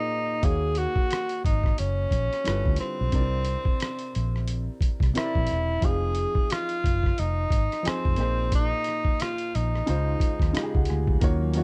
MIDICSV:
0, 0, Header, 1, 7, 480
1, 0, Start_track
1, 0, Tempo, 674157
1, 305, Time_signature, 4, 2, 24, 8
1, 8283, End_track
2, 0, Start_track
2, 0, Title_t, "Grand piano"
2, 0, Program_c, 0, 0
2, 0, Control_c, 0, 64, 127
2, 0, Note_on_c, 0, 46, 58
2, 0, Note_on_c, 0, 58, 51
2, 0, Note_on_c, 0, 63, 55
2, 0, Note_on_c, 0, 68, 54
2, 0, Note_on_c, 0, 72, 61
2, 226, Note_off_c, 0, 46, 0
2, 228, Note_off_c, 0, 58, 0
2, 232, Note_off_c, 0, 63, 0
2, 235, Note_off_c, 0, 68, 0
2, 238, Note_off_c, 0, 72, 0
2, 296, Note_on_c, 0, 51, 59
2, 300, Note_on_c, 0, 58, 51
2, 308, Note_on_c, 0, 77, 47
2, 313, Control_c, 0, 64, 0
2, 314, Note_on_c, 0, 66, 52
2, 319, Note_on_c, 0, 73, 67
2, 449, Control_c, 0, 64, 127
2, 1090, Note_off_c, 0, 51, 0
2, 1092, Note_off_c, 0, 58, 0
2, 1096, Note_off_c, 0, 77, 0
2, 1099, Note_off_c, 0, 66, 0
2, 1101, Note_off_c, 0, 73, 0
2, 1738, Note_on_c, 0, 55, 60
2, 1746, Note_on_c, 0, 50, 53
2, 1750, Note_on_c, 0, 64, 50
2, 1754, Control_c, 0, 64, 0
2, 1756, Note_on_c, 0, 65, 53
2, 1759, Note_on_c, 0, 69, 50
2, 1766, Note_on_c, 0, 71, 63
2, 1896, Control_c, 0, 64, 127
2, 2146, Note_off_c, 0, 55, 0
2, 2150, Note_off_c, 0, 50, 0
2, 2152, Note_off_c, 0, 64, 0
2, 2155, Note_off_c, 0, 65, 0
2, 2156, Note_off_c, 0, 69, 0
2, 2160, Note_off_c, 0, 71, 0
2, 2217, Note_on_c, 0, 48, 59
2, 2225, Note_on_c, 0, 60, 55
2, 2230, Note_on_c, 0, 62, 45
2, 2235, Control_c, 0, 64, 0
2, 2238, Note_on_c, 0, 70, 60
2, 2245, Note_on_c, 0, 74, 63
2, 2278, Note_on_c, 0, 64, 55
2, 2282, Note_off_c, 0, 62, 0
2, 2375, Control_c, 0, 64, 127
2, 3010, Note_off_c, 0, 48, 0
2, 3014, Note_off_c, 0, 60, 0
2, 3021, Note_off_c, 0, 70, 0
2, 3024, Note_off_c, 0, 74, 0
2, 3041, Note_off_c, 0, 64, 0
2, 3658, Note_on_c, 0, 48, 62
2, 3663, Note_on_c, 0, 60, 55
2, 3672, Note_on_c, 0, 64, 55
2, 3677, Note_on_c, 0, 70, 61
2, 3685, Note_on_c, 0, 72, 49
2, 3729, Note_off_c, 0, 72, 0
2, 3732, Note_on_c, 0, 74, 70
2, 4066, Note_off_c, 0, 48, 0
2, 4069, Note_off_c, 0, 60, 0
2, 4073, Note_off_c, 0, 64, 0
2, 4075, Note_off_c, 0, 70, 0
2, 4103, Note_off_c, 0, 74, 0
2, 4135, Note_on_c, 0, 53, 61
2, 4142, Note_on_c, 0, 60, 56
2, 4147, Note_on_c, 0, 63, 58
2, 4155, Control_c, 0, 64, 0
2, 4155, Note_on_c, 0, 68, 52
2, 4163, Note_on_c, 0, 77, 69
2, 4278, Control_c, 0, 64, 127
2, 4929, Note_off_c, 0, 53, 0
2, 4933, Note_off_c, 0, 60, 0
2, 4935, Note_off_c, 0, 63, 0
2, 4939, Note_off_c, 0, 68, 0
2, 4943, Note_off_c, 0, 77, 0
2, 5574, Note_on_c, 0, 53, 65
2, 5583, Note_on_c, 0, 60, 55
2, 5588, Note_on_c, 0, 63, 52
2, 5594, Note_on_c, 0, 68, 58
2, 5601, Note_on_c, 0, 80, 69
2, 5815, Note_on_c, 0, 46, 61
2, 5819, Note_off_c, 0, 53, 0
2, 5819, Note_off_c, 0, 63, 0
2, 5822, Note_on_c, 0, 58, 58
2, 5824, Note_off_c, 0, 60, 0
2, 5827, Note_off_c, 0, 68, 0
2, 5829, Note_on_c, 0, 63, 58
2, 5833, Note_off_c, 0, 80, 0
2, 5833, Control_c, 0, 64, 0
2, 5838, Note_on_c, 0, 68, 58
2, 5844, Note_on_c, 0, 72, 75
2, 5955, Control_c, 0, 64, 127
2, 6609, Note_off_c, 0, 46, 0
2, 6613, Note_off_c, 0, 58, 0
2, 6616, Note_off_c, 0, 63, 0
2, 6621, Note_off_c, 0, 68, 0
2, 6624, Note_off_c, 0, 72, 0
2, 7023, Note_on_c, 0, 49, 70
2, 7028, Note_on_c, 0, 56, 60
2, 7035, Note_on_c, 0, 63, 64
2, 7036, Control_c, 0, 64, 0
2, 7042, Note_on_c, 0, 65, 71
2, 7046, Note_on_c, 0, 72, 83
2, 7167, Control_c, 0, 64, 127
2, 7428, Note_off_c, 0, 49, 0
2, 7431, Note_off_c, 0, 56, 0
2, 7434, Note_off_c, 0, 63, 0
2, 7438, Note_off_c, 0, 65, 0
2, 7440, Note_off_c, 0, 72, 0
2, 7500, Note_on_c, 0, 49, 72
2, 7505, Note_on_c, 0, 56, 57
2, 7511, Note_on_c, 0, 63, 67
2, 7514, Note_on_c, 0, 75, 58
2, 7519, Note_on_c, 0, 65, 64
2, 7526, Note_on_c, 0, 67, 59
2, 7569, Note_off_c, 0, 67, 0
2, 7571, Note_on_c, 0, 68, 84
2, 7639, Note_off_c, 0, 75, 0
2, 7653, Note_on_c, 0, 78, 57
2, 7743, Note_off_c, 0, 78, 0
2, 7754, Note_on_c, 0, 80, 53
2, 7907, Note_off_c, 0, 49, 0
2, 7909, Note_off_c, 0, 56, 0
2, 7912, Note_off_c, 0, 63, 0
2, 7917, Note_off_c, 0, 65, 0
2, 7943, Note_off_c, 0, 68, 0
2, 7973, Note_off_c, 0, 80, 0
2, 7978, Note_on_c, 0, 51, 80
2, 7984, Note_on_c, 0, 58, 76
2, 7992, Note_on_c, 0, 65, 72
2, 7996, Control_c, 0, 64, 0
2, 7996, Note_on_c, 0, 66, 73
2, 8002, Note_on_c, 0, 73, 93
2, 8098, Control_c, 0, 64, 127
2, 8184, Note_off_c, 0, 51, 0
2, 8187, Note_off_c, 0, 58, 0
2, 8191, Note_off_c, 0, 65, 0
2, 8193, Note_off_c, 0, 66, 0
2, 8196, Note_off_c, 0, 73, 0
2, 8217, Note_on_c, 0, 51, 84
2, 8224, Note_on_c, 0, 58, 73
2, 8231, Note_on_c, 0, 65, 75
2, 8238, Note_on_c, 0, 66, 79
2, 8243, Note_on_c, 0, 73, 87
2, 8283, Note_off_c, 0, 51, 0
2, 8283, Note_off_c, 0, 58, 0
2, 8283, Note_off_c, 0, 65, 0
2, 8283, Note_off_c, 0, 66, 0
2, 8283, Note_off_c, 0, 73, 0
2, 8283, End_track
3, 0, Start_track
3, 0, Title_t, "Tenor saxophone"
3, 0, Program_c, 1, 66
3, 0, Note_on_c, 1, 63, 95
3, 314, Note_on_c, 1, 68, 93
3, 325, Note_off_c, 1, 63, 0
3, 554, Note_on_c, 1, 66, 97
3, 564, Note_off_c, 1, 68, 0
3, 1028, Note_off_c, 1, 66, 0
3, 1032, Note_on_c, 1, 63, 76
3, 1270, Note_on_c, 1, 61, 86
3, 1281, Note_off_c, 1, 63, 0
3, 1988, Note_off_c, 1, 61, 0
3, 1994, Note_on_c, 1, 60, 86
3, 3401, Note_off_c, 1, 60, 0
3, 3684, Note_on_c, 1, 64, 90
3, 4165, Note_on_c, 1, 68, 100
3, 4176, Note_off_c, 1, 64, 0
3, 4643, Note_on_c, 1, 65, 90
3, 4654, Note_off_c, 1, 68, 0
3, 5123, Note_on_c, 1, 63, 81
3, 5134, Note_off_c, 1, 65, 0
3, 5608, Note_on_c, 1, 60, 84
3, 5619, Note_off_c, 1, 63, 0
3, 6077, Note_off_c, 1, 60, 0
3, 6085, Note_on_c, 1, 63, 96
3, 6563, Note_on_c, 1, 65, 89
3, 6573, Note_off_c, 1, 63, 0
3, 6803, Note_on_c, 1, 63, 79
3, 6813, Note_off_c, 1, 65, 0
3, 7754, Note_off_c, 1, 63, 0
3, 8283, End_track
4, 0, Start_track
4, 0, Title_t, "Analog synth pad"
4, 0, Program_c, 2, 89
4, 7986, Note_on_c, 2, 54, 73
4, 7987, Note_on_c, 2, 51, 88
4, 7988, Note_on_c, 2, 61, 76
4, 8283, Note_off_c, 2, 51, 0
4, 8283, Note_off_c, 2, 54, 0
4, 8283, Note_off_c, 2, 61, 0
4, 8283, End_track
5, 0, Start_track
5, 0, Title_t, "Fingered electric bass"
5, 0, Program_c, 3, 33
5, 315, Note_on_c, 3, 39, 80
5, 608, Note_off_c, 3, 39, 0
5, 1038, Note_on_c, 3, 32, 67
5, 1221, Note_off_c, 3, 32, 0
5, 1281, Note_on_c, 3, 30, 80
5, 1463, Note_off_c, 3, 30, 0
5, 1511, Note_on_c, 3, 34, 78
5, 1618, Note_off_c, 3, 34, 0
5, 1762, Note_on_c, 3, 31, 83
5, 1864, Note_off_c, 3, 31, 0
5, 1899, Note_on_c, 3, 38, 83
5, 1972, Note_off_c, 3, 38, 0
5, 2142, Note_on_c, 3, 35, 88
5, 2214, Note_off_c, 3, 35, 0
5, 2234, Note_on_c, 3, 36, 83
5, 2528, Note_off_c, 3, 36, 0
5, 2963, Note_on_c, 3, 34, 66
5, 3332, Note_off_c, 3, 34, 0
5, 3571, Note_on_c, 3, 36, 75
5, 3647, Note_off_c, 3, 36, 0
5, 3821, Note_on_c, 3, 34, 68
5, 3894, Note_off_c, 3, 34, 0
5, 3923, Note_on_c, 3, 28, 67
5, 4104, Note_off_c, 3, 28, 0
5, 4154, Note_on_c, 3, 29, 77
5, 4448, Note_off_c, 3, 29, 0
5, 4881, Note_on_c, 3, 30, 67
5, 5063, Note_off_c, 3, 30, 0
5, 5121, Note_on_c, 3, 29, 85
5, 5303, Note_off_c, 3, 29, 0
5, 5353, Note_on_c, 3, 32, 77
5, 5459, Note_off_c, 3, 32, 0
5, 5742, Note_on_c, 3, 29, 75
5, 5840, Note_off_c, 3, 29, 0
5, 5840, Note_on_c, 3, 34, 88
5, 6210, Note_off_c, 3, 34, 0
5, 6803, Note_on_c, 3, 34, 66
5, 6984, Note_off_c, 3, 34, 0
5, 7042, Note_on_c, 3, 37, 77
5, 7223, Note_off_c, 3, 37, 0
5, 7411, Note_on_c, 3, 39, 76
5, 7488, Note_off_c, 3, 39, 0
5, 7660, Note_on_c, 3, 37, 73
5, 7733, Note_off_c, 3, 37, 0
5, 7762, Note_on_c, 3, 38, 79
5, 7944, Note_off_c, 3, 38, 0
5, 7995, Note_on_c, 3, 39, 89
5, 8283, Note_off_c, 3, 39, 0
5, 8283, End_track
6, 0, Start_track
6, 0, Title_t, "Muted fingered electric bass strokes"
6, 3431, Note_on_c, 9, 29, 44
6, 3502, Note_off_c, 9, 29, 0
6, 5603, Note_on_c, 9, 29, 43
6, 5674, Note_off_c, 9, 29, 0
6, 7272, Note_on_c, 9, 29, 44
6, 7343, Note_off_c, 9, 29, 0
6, 8283, End_track
7, 0, Start_track
7, 0, Title_t, "Drums"
7, 306, Note_on_c, 9, 36, 98
7, 306, Note_on_c, 9, 42, 73
7, 377, Note_off_c, 9, 36, 0
7, 377, Note_off_c, 9, 42, 0
7, 534, Note_on_c, 9, 42, 55
7, 606, Note_off_c, 9, 42, 0
7, 681, Note_on_c, 9, 36, 87
7, 752, Note_off_c, 9, 36, 0
7, 787, Note_on_c, 9, 42, 78
7, 804, Note_on_c, 9, 37, 90
7, 859, Note_off_c, 9, 42, 0
7, 875, Note_off_c, 9, 37, 0
7, 921, Note_on_c, 9, 42, 45
7, 992, Note_off_c, 9, 42, 0
7, 1029, Note_on_c, 9, 36, 95
7, 1036, Note_on_c, 9, 42, 66
7, 1100, Note_off_c, 9, 36, 0
7, 1108, Note_off_c, 9, 42, 0
7, 1164, Note_on_c, 9, 36, 83
7, 1182, Note_on_c, 9, 37, 33
7, 1235, Note_off_c, 9, 36, 0
7, 1253, Note_off_c, 9, 37, 0
7, 1268, Note_on_c, 9, 42, 72
7, 1339, Note_off_c, 9, 42, 0
7, 1501, Note_on_c, 9, 36, 72
7, 1510, Note_on_c, 9, 42, 61
7, 1573, Note_off_c, 9, 36, 0
7, 1581, Note_off_c, 9, 42, 0
7, 1656, Note_on_c, 9, 42, 35
7, 1663, Note_on_c, 9, 37, 33
7, 1728, Note_off_c, 9, 42, 0
7, 1734, Note_off_c, 9, 37, 0
7, 1747, Note_on_c, 9, 42, 76
7, 1763, Note_on_c, 9, 37, 99
7, 1818, Note_off_c, 9, 42, 0
7, 1834, Note_off_c, 9, 37, 0
7, 1891, Note_on_c, 9, 36, 77
7, 1962, Note_off_c, 9, 36, 0
7, 1968, Note_on_c, 9, 42, 61
7, 2002, Note_on_c, 9, 37, 30
7, 2039, Note_off_c, 9, 42, 0
7, 2073, Note_off_c, 9, 37, 0
7, 2223, Note_on_c, 9, 42, 77
7, 2225, Note_on_c, 9, 36, 95
7, 2294, Note_off_c, 9, 42, 0
7, 2296, Note_off_c, 9, 36, 0
7, 2454, Note_on_c, 9, 42, 55
7, 2525, Note_off_c, 9, 42, 0
7, 2601, Note_on_c, 9, 36, 90
7, 2672, Note_off_c, 9, 36, 0
7, 2707, Note_on_c, 9, 42, 75
7, 2723, Note_on_c, 9, 37, 89
7, 2778, Note_off_c, 9, 42, 0
7, 2794, Note_off_c, 9, 37, 0
7, 2839, Note_on_c, 9, 42, 49
7, 2910, Note_off_c, 9, 42, 0
7, 2955, Note_on_c, 9, 42, 64
7, 3026, Note_off_c, 9, 42, 0
7, 3103, Note_on_c, 9, 37, 29
7, 3174, Note_off_c, 9, 37, 0
7, 3187, Note_on_c, 9, 42, 78
7, 3258, Note_off_c, 9, 42, 0
7, 3422, Note_on_c, 9, 36, 73
7, 3432, Note_on_c, 9, 42, 56
7, 3494, Note_off_c, 9, 36, 0
7, 3503, Note_off_c, 9, 42, 0
7, 3561, Note_on_c, 9, 36, 76
7, 3579, Note_on_c, 9, 42, 38
7, 3585, Note_on_c, 9, 37, 34
7, 3632, Note_off_c, 9, 36, 0
7, 3650, Note_off_c, 9, 42, 0
7, 3656, Note_off_c, 9, 37, 0
7, 3669, Note_on_c, 9, 42, 75
7, 3685, Note_on_c, 9, 37, 102
7, 3740, Note_off_c, 9, 42, 0
7, 3756, Note_off_c, 9, 37, 0
7, 3812, Note_on_c, 9, 36, 80
7, 3883, Note_off_c, 9, 36, 0
7, 3892, Note_on_c, 9, 42, 54
7, 3926, Note_on_c, 9, 37, 31
7, 3963, Note_off_c, 9, 42, 0
7, 3997, Note_off_c, 9, 37, 0
7, 4145, Note_on_c, 9, 42, 73
7, 4146, Note_on_c, 9, 36, 99
7, 4216, Note_off_c, 9, 42, 0
7, 4217, Note_off_c, 9, 36, 0
7, 4377, Note_on_c, 9, 42, 64
7, 4448, Note_off_c, 9, 42, 0
7, 4522, Note_on_c, 9, 36, 92
7, 4593, Note_off_c, 9, 36, 0
7, 4629, Note_on_c, 9, 42, 76
7, 4645, Note_on_c, 9, 37, 100
7, 4700, Note_off_c, 9, 42, 0
7, 4717, Note_off_c, 9, 37, 0
7, 4763, Note_on_c, 9, 42, 47
7, 4834, Note_off_c, 9, 42, 0
7, 4871, Note_on_c, 9, 36, 89
7, 4882, Note_on_c, 9, 42, 66
7, 4942, Note_off_c, 9, 36, 0
7, 4953, Note_off_c, 9, 42, 0
7, 5007, Note_on_c, 9, 36, 84
7, 5029, Note_on_c, 9, 37, 31
7, 5078, Note_off_c, 9, 36, 0
7, 5100, Note_off_c, 9, 37, 0
7, 5112, Note_on_c, 9, 42, 74
7, 5183, Note_off_c, 9, 42, 0
7, 5343, Note_on_c, 9, 36, 82
7, 5354, Note_on_c, 9, 42, 60
7, 5414, Note_off_c, 9, 36, 0
7, 5425, Note_off_c, 9, 42, 0
7, 5498, Note_on_c, 9, 42, 36
7, 5504, Note_on_c, 9, 37, 32
7, 5569, Note_off_c, 9, 42, 0
7, 5575, Note_off_c, 9, 37, 0
7, 5591, Note_on_c, 9, 42, 69
7, 5608, Note_on_c, 9, 37, 105
7, 5662, Note_off_c, 9, 42, 0
7, 5679, Note_off_c, 9, 37, 0
7, 5733, Note_on_c, 9, 36, 79
7, 5804, Note_off_c, 9, 36, 0
7, 5812, Note_on_c, 9, 42, 57
7, 5846, Note_on_c, 9, 37, 30
7, 5884, Note_off_c, 9, 42, 0
7, 5918, Note_off_c, 9, 37, 0
7, 6066, Note_on_c, 9, 36, 96
7, 6066, Note_on_c, 9, 42, 79
7, 6137, Note_off_c, 9, 36, 0
7, 6137, Note_off_c, 9, 42, 0
7, 6296, Note_on_c, 9, 42, 58
7, 6326, Note_on_c, 9, 37, 34
7, 6367, Note_off_c, 9, 42, 0
7, 6397, Note_off_c, 9, 37, 0
7, 6442, Note_on_c, 9, 36, 82
7, 6513, Note_off_c, 9, 36, 0
7, 6549, Note_on_c, 9, 42, 85
7, 6565, Note_on_c, 9, 37, 85
7, 6620, Note_off_c, 9, 42, 0
7, 6636, Note_off_c, 9, 37, 0
7, 6681, Note_on_c, 9, 42, 47
7, 6752, Note_off_c, 9, 42, 0
7, 6800, Note_on_c, 9, 42, 66
7, 6871, Note_off_c, 9, 42, 0
7, 6945, Note_on_c, 9, 37, 35
7, 7016, Note_off_c, 9, 37, 0
7, 7029, Note_on_c, 9, 42, 71
7, 7100, Note_off_c, 9, 42, 0
7, 7263, Note_on_c, 9, 36, 81
7, 7271, Note_on_c, 9, 42, 65
7, 7334, Note_off_c, 9, 36, 0
7, 7342, Note_off_c, 9, 42, 0
7, 7402, Note_on_c, 9, 36, 69
7, 7418, Note_on_c, 9, 42, 38
7, 7424, Note_on_c, 9, 37, 33
7, 7473, Note_off_c, 9, 36, 0
7, 7489, Note_off_c, 9, 42, 0
7, 7495, Note_off_c, 9, 37, 0
7, 7509, Note_on_c, 9, 42, 72
7, 7525, Note_on_c, 9, 37, 104
7, 7580, Note_off_c, 9, 42, 0
7, 7596, Note_off_c, 9, 37, 0
7, 7652, Note_on_c, 9, 36, 82
7, 7723, Note_off_c, 9, 36, 0
7, 7728, Note_on_c, 9, 42, 53
7, 7762, Note_on_c, 9, 37, 33
7, 7799, Note_off_c, 9, 42, 0
7, 7833, Note_off_c, 9, 37, 0
7, 7885, Note_on_c, 9, 36, 93
7, 7956, Note_off_c, 9, 36, 0
7, 7984, Note_on_c, 9, 42, 79
7, 7986, Note_on_c, 9, 36, 111
7, 8056, Note_off_c, 9, 42, 0
7, 8058, Note_off_c, 9, 36, 0
7, 8213, Note_on_c, 9, 42, 71
7, 8283, Note_off_c, 9, 42, 0
7, 8283, End_track
0, 0, End_of_file